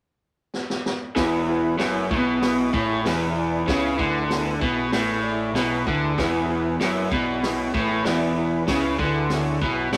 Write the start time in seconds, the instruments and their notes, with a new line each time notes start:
0.54 snare
0.70 snare
0.86 snare
1.15 picked electric bass E1, overdriven electric guitar E2, transistor combo organ E4 G#4 B4, kick, snare, open hi-hat
1.48 transistor combo organ E4 G#4 B4
1.78 picked electric bass F#1, overdriven electric guitar F#2, transistor combo organ E4 G#4 B4, snare, open hi-hat
2.11 picked electric bass B1, overdriven electric guitar B2, transistor combo organ E4 G#4 B4, kick
2.42 transistor combo organ E4 G#4 B4, snare, open hi-hat
2.72 picked electric bass A1, overdriven electric guitar A2, transistor combo organ E4 G#4 C#5, kick
3.04 picked electric bass E1, overdriven electric guitar E2, transistor combo organ E4 G#4 B4, snare, open hi-hat
3.33 transistor combo organ E4 G#4 D5
3.65 picked electric bass C#2, overdriven electric guitar C#3, transistor combo organ E4 G#4 B4, kick, snare, open hi-hat
3.96 picked electric bass D2, overdriven electric guitar D3, transistor combo organ E4 G#4 B4, kick
4.27 transistor combo organ E4 G#4 B4, snare, open hi-hat
4.59 picked electric bass B1, overdriven electric guitar B2, transistor combo organ E4 G#4 B4, kick
4.91 picked electric bass A1, overdriven electric guitar A2, transistor combo organ E4 G#4 B4, snare, open hi-hat
5.23 transistor combo organ E4 G#4 D5
5.53 picked electric bass B1, overdriven electric guitar B2, transistor combo organ E4 G#4 B4, snare, open hi-hat
5.85 picked electric bass D2, overdriven electric guitar D3, transistor combo organ E4 G#4 B4, kick
6.18 picked electric bass E1, overdriven electric guitar E2, transistor combo organ E4 G#4 B4, kick, snare, open hi-hat
6.49 transistor combo organ E4 G#4 B4
6.80 picked electric bass F#1, overdriven electric guitar F#2, transistor combo organ E4 G#4 B4, snare, open hi-hat
7.11 picked electric bass B1, overdriven electric guitar B2, transistor combo organ E4 G#4 D5, kick
7.43 transistor combo organ E4 G#4 C#5, snare, open hi-hat
7.73 picked electric bass A1, overdriven electric guitar A2, kick
7.78 transistor combo organ E4 G#4 B4
8.03 picked electric bass E1, overdriven electric guitar E2, transistor combo organ E4, snare, open hi-hat
8.07 transistor combo organ G#4 D5
8.36 transistor combo organ E4 G#4 B4
8.67 picked electric bass C#2, overdriven electric guitar C#3, transistor combo organ E4, kick, snare, open hi-hat
8.72 transistor combo organ G#4 B4
8.99 picked electric bass D2, overdriven electric guitar D3, transistor combo organ E4, kick
9.03 transistor combo organ G#4 B4
9.30 transistor combo organ E4 G#4 C#5, snare, open hi-hat
9.62 picked electric bass B1, overdriven electric guitar B2, transistor combo organ E4 G#4 B4, kick
9.90 picked electric bass A1, overdriven electric guitar A2, transistor combo organ E4 G#4 D5, snare, open hi-hat